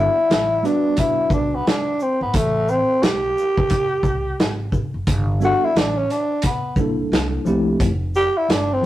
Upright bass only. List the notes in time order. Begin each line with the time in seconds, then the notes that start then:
0.30 A1
1.30 B1
2.21 G#1
2.34 A1
3.03 B1
4.03 C2
4.40 G#1
4.94 F#1
5.07 G1
5.76 A1
6.76 B1
7.12 C2
7.46 C2
7.81 F1
8.49 G1